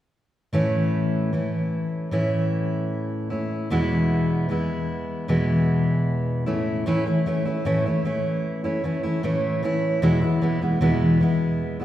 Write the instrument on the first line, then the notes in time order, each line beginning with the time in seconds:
steel-string acoustic guitar
0.53 A2 E3 A3 C#4 E4
1.33 E3 A3 C#4 E4
2.11 A2 E3 A3 C#4 E4
3.30 A3 C#4 E4
3.70 E2 B2 E3 G#3 B3 E4
4.49 E3 G#3 B3 E4
5.28 E2 B2 E3 G#3 B3 E4
6.46 A2 E3 A3 C#4 E4
6.86 A2 E3 A3 C#4 E4
7.06 A3 C#4 E4
7.26 E3 A3 C#4 E4
7.45 A3 C#4 E4
7.65 A2 E3 A3 C#4 E4
7.85 A3 C#4 E4
8.05 E3 A3 C#4 E4
8.64 A3 C#4 E4
8.84 E3 A3 C#4 E4
9.03 A3 C#4 E4
9.23 A2 E3 A3 C#4 E4
9.63 E3 A3 C#4 E4
10.02 E2 B2 E3 G#3 B3 E4
10.22 E3 G#3 B3 E4
10.42 E3 G#3 B3 E4
10.61 E3 G#3 B3 E4
10.81 E2 B2 E3 G#3 B3 E4
11.20 E3 G#3 B3 E4
11.80 G#3 B3 E4